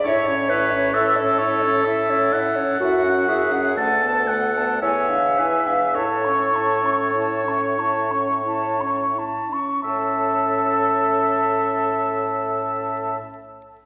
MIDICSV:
0, 0, Header, 1, 6, 480
1, 0, Start_track
1, 0, Key_signature, 3, "major"
1, 0, Tempo, 907716
1, 17, Time_signature, 3, 2, 24, 8
1, 977, Tempo, 953895
1, 1937, Tempo, 1048951
1, 2417, Tempo, 1129944
1, 2897, Tempo, 1202405
1, 3377, Tempo, 1307190
1, 3857, Tempo, 1398601
1, 4337, Tempo, 1354402
1, 5759, End_track
2, 0, Start_track
2, 0, Title_t, "Flute"
2, 0, Program_c, 0, 73
2, 22, Note_on_c, 0, 76, 62
2, 136, Note_on_c, 0, 73, 54
2, 144, Note_off_c, 0, 76, 0
2, 258, Note_on_c, 0, 76, 52
2, 266, Note_off_c, 0, 73, 0
2, 372, Note_on_c, 0, 73, 50
2, 380, Note_off_c, 0, 76, 0
2, 493, Note_off_c, 0, 73, 0
2, 497, Note_on_c, 0, 76, 56
2, 613, Note_on_c, 0, 73, 50
2, 621, Note_off_c, 0, 76, 0
2, 731, Note_on_c, 0, 76, 50
2, 739, Note_off_c, 0, 73, 0
2, 855, Note_on_c, 0, 73, 45
2, 863, Note_off_c, 0, 76, 0
2, 976, Note_off_c, 0, 73, 0
2, 979, Note_on_c, 0, 76, 50
2, 1101, Note_on_c, 0, 73, 48
2, 1109, Note_off_c, 0, 76, 0
2, 1223, Note_on_c, 0, 76, 49
2, 1231, Note_off_c, 0, 73, 0
2, 1332, Note_on_c, 0, 73, 42
2, 1340, Note_off_c, 0, 76, 0
2, 1452, Note_off_c, 0, 73, 0
2, 1460, Note_on_c, 0, 76, 51
2, 1575, Note_on_c, 0, 78, 44
2, 1583, Note_off_c, 0, 76, 0
2, 1698, Note_on_c, 0, 76, 49
2, 1706, Note_off_c, 0, 78, 0
2, 1823, Note_on_c, 0, 78, 42
2, 1831, Note_off_c, 0, 76, 0
2, 1942, Note_off_c, 0, 78, 0
2, 1950, Note_on_c, 0, 78, 44
2, 2059, Note_on_c, 0, 81, 40
2, 2066, Note_off_c, 0, 78, 0
2, 2185, Note_on_c, 0, 78, 42
2, 2191, Note_off_c, 0, 81, 0
2, 2310, Note_on_c, 0, 81, 35
2, 2317, Note_off_c, 0, 78, 0
2, 2425, Note_off_c, 0, 81, 0
2, 2429, Note_on_c, 0, 80, 38
2, 2537, Note_on_c, 0, 77, 38
2, 2544, Note_off_c, 0, 80, 0
2, 2664, Note_on_c, 0, 80, 40
2, 2671, Note_off_c, 0, 77, 0
2, 2782, Note_on_c, 0, 77, 35
2, 2789, Note_off_c, 0, 80, 0
2, 2901, Note_off_c, 0, 77, 0
2, 2905, Note_on_c, 0, 81, 41
2, 3022, Note_on_c, 0, 85, 35
2, 3028, Note_off_c, 0, 81, 0
2, 3144, Note_on_c, 0, 81, 37
2, 3150, Note_off_c, 0, 85, 0
2, 3266, Note_on_c, 0, 85, 32
2, 3272, Note_off_c, 0, 81, 0
2, 3383, Note_off_c, 0, 85, 0
2, 3388, Note_on_c, 0, 81, 36
2, 3504, Note_on_c, 0, 85, 32
2, 3509, Note_off_c, 0, 81, 0
2, 3617, Note_on_c, 0, 81, 32
2, 3623, Note_off_c, 0, 85, 0
2, 3735, Note_on_c, 0, 85, 31
2, 3741, Note_off_c, 0, 81, 0
2, 3859, Note_off_c, 0, 85, 0
2, 3865, Note_on_c, 0, 81, 33
2, 3982, Note_on_c, 0, 85, 31
2, 3987, Note_off_c, 0, 81, 0
2, 4111, Note_on_c, 0, 81, 31
2, 4116, Note_off_c, 0, 85, 0
2, 4229, Note_on_c, 0, 85, 27
2, 4234, Note_off_c, 0, 81, 0
2, 4336, Note_off_c, 0, 85, 0
2, 4338, Note_on_c, 0, 81, 42
2, 5520, Note_off_c, 0, 81, 0
2, 5759, End_track
3, 0, Start_track
3, 0, Title_t, "Oboe"
3, 0, Program_c, 1, 68
3, 18, Note_on_c, 1, 73, 68
3, 500, Note_on_c, 1, 76, 65
3, 508, Note_off_c, 1, 73, 0
3, 733, Note_on_c, 1, 73, 59
3, 741, Note_off_c, 1, 76, 0
3, 978, Note_on_c, 1, 76, 58
3, 986, Note_off_c, 1, 73, 0
3, 1220, Note_on_c, 1, 78, 71
3, 1227, Note_off_c, 1, 76, 0
3, 1940, Note_off_c, 1, 78, 0
3, 1946, Note_on_c, 1, 81, 55
3, 2175, Note_on_c, 1, 78, 48
3, 2182, Note_off_c, 1, 81, 0
3, 2419, Note_off_c, 1, 78, 0
3, 2423, Note_on_c, 1, 76, 51
3, 2904, Note_on_c, 1, 73, 50
3, 2910, Note_off_c, 1, 76, 0
3, 4103, Note_off_c, 1, 73, 0
3, 4334, Note_on_c, 1, 76, 42
3, 5517, Note_off_c, 1, 76, 0
3, 5759, End_track
4, 0, Start_track
4, 0, Title_t, "Clarinet"
4, 0, Program_c, 2, 71
4, 33, Note_on_c, 2, 73, 89
4, 260, Note_on_c, 2, 71, 83
4, 268, Note_off_c, 2, 73, 0
4, 492, Note_off_c, 2, 71, 0
4, 495, Note_on_c, 2, 69, 98
4, 1434, Note_off_c, 2, 69, 0
4, 1457, Note_on_c, 2, 66, 73
4, 1702, Note_on_c, 2, 68, 71
4, 1709, Note_off_c, 2, 66, 0
4, 1945, Note_on_c, 2, 69, 73
4, 1952, Note_off_c, 2, 68, 0
4, 2421, Note_off_c, 2, 69, 0
4, 2424, Note_on_c, 2, 73, 72
4, 2660, Note_on_c, 2, 71, 55
4, 2667, Note_off_c, 2, 73, 0
4, 2903, Note_on_c, 2, 69, 62
4, 2909, Note_off_c, 2, 71, 0
4, 3860, Note_off_c, 2, 69, 0
4, 4338, Note_on_c, 2, 69, 52
4, 5521, Note_off_c, 2, 69, 0
4, 5759, End_track
5, 0, Start_track
5, 0, Title_t, "French horn"
5, 0, Program_c, 3, 60
5, 40, Note_on_c, 3, 64, 63
5, 146, Note_on_c, 3, 61, 55
5, 154, Note_off_c, 3, 64, 0
5, 268, Note_on_c, 3, 64, 51
5, 275, Note_off_c, 3, 61, 0
5, 389, Note_on_c, 3, 61, 47
5, 397, Note_off_c, 3, 64, 0
5, 501, Note_off_c, 3, 61, 0
5, 512, Note_on_c, 3, 64, 51
5, 634, Note_on_c, 3, 61, 47
5, 642, Note_off_c, 3, 64, 0
5, 744, Note_on_c, 3, 64, 49
5, 752, Note_off_c, 3, 61, 0
5, 866, Note_on_c, 3, 61, 51
5, 874, Note_off_c, 3, 64, 0
5, 981, Note_off_c, 3, 61, 0
5, 984, Note_on_c, 3, 64, 54
5, 1103, Note_on_c, 3, 61, 47
5, 1110, Note_off_c, 3, 64, 0
5, 1216, Note_on_c, 3, 64, 50
5, 1223, Note_off_c, 3, 61, 0
5, 1339, Note_on_c, 3, 61, 44
5, 1347, Note_off_c, 3, 64, 0
5, 1454, Note_off_c, 3, 61, 0
5, 1457, Note_on_c, 3, 64, 51
5, 1581, Note_on_c, 3, 61, 45
5, 1588, Note_off_c, 3, 64, 0
5, 1696, Note_on_c, 3, 64, 45
5, 1703, Note_off_c, 3, 61, 0
5, 1815, Note_on_c, 3, 61, 41
5, 1823, Note_off_c, 3, 64, 0
5, 1938, Note_off_c, 3, 61, 0
5, 1944, Note_on_c, 3, 57, 44
5, 2056, Note_on_c, 3, 59, 39
5, 2063, Note_off_c, 3, 57, 0
5, 2177, Note_on_c, 3, 57, 39
5, 2184, Note_off_c, 3, 59, 0
5, 2303, Note_on_c, 3, 59, 41
5, 2310, Note_off_c, 3, 57, 0
5, 2422, Note_off_c, 3, 59, 0
5, 2426, Note_on_c, 3, 64, 43
5, 2540, Note_on_c, 3, 62, 36
5, 2546, Note_off_c, 3, 64, 0
5, 2665, Note_on_c, 3, 64, 38
5, 2671, Note_off_c, 3, 62, 0
5, 2783, Note_on_c, 3, 62, 35
5, 2790, Note_off_c, 3, 64, 0
5, 2902, Note_off_c, 3, 62, 0
5, 2906, Note_on_c, 3, 64, 37
5, 3026, Note_on_c, 3, 61, 33
5, 3032, Note_off_c, 3, 64, 0
5, 3139, Note_on_c, 3, 64, 33
5, 3145, Note_off_c, 3, 61, 0
5, 3257, Note_on_c, 3, 61, 34
5, 3263, Note_off_c, 3, 64, 0
5, 3378, Note_off_c, 3, 61, 0
5, 3380, Note_on_c, 3, 64, 35
5, 3495, Note_on_c, 3, 61, 31
5, 3500, Note_off_c, 3, 64, 0
5, 3613, Note_on_c, 3, 64, 32
5, 3618, Note_off_c, 3, 61, 0
5, 3737, Note_on_c, 3, 61, 33
5, 3742, Note_off_c, 3, 64, 0
5, 3858, Note_off_c, 3, 61, 0
5, 3860, Note_on_c, 3, 64, 35
5, 3977, Note_on_c, 3, 61, 31
5, 3982, Note_off_c, 3, 64, 0
5, 4100, Note_on_c, 3, 64, 30
5, 4105, Note_off_c, 3, 61, 0
5, 4220, Note_on_c, 3, 61, 29
5, 4226, Note_off_c, 3, 64, 0
5, 4332, Note_off_c, 3, 61, 0
5, 4334, Note_on_c, 3, 61, 37
5, 5517, Note_off_c, 3, 61, 0
5, 5759, End_track
6, 0, Start_track
6, 0, Title_t, "Bassoon"
6, 0, Program_c, 4, 70
6, 23, Note_on_c, 4, 45, 68
6, 1293, Note_off_c, 4, 45, 0
6, 1458, Note_on_c, 4, 42, 61
6, 1945, Note_on_c, 4, 38, 53
6, 1952, Note_off_c, 4, 42, 0
6, 2421, Note_off_c, 4, 38, 0
6, 2424, Note_on_c, 4, 40, 45
6, 2903, Note_on_c, 4, 45, 46
6, 2909, Note_off_c, 4, 40, 0
6, 4180, Note_off_c, 4, 45, 0
6, 4339, Note_on_c, 4, 45, 43
6, 5522, Note_off_c, 4, 45, 0
6, 5759, End_track
0, 0, End_of_file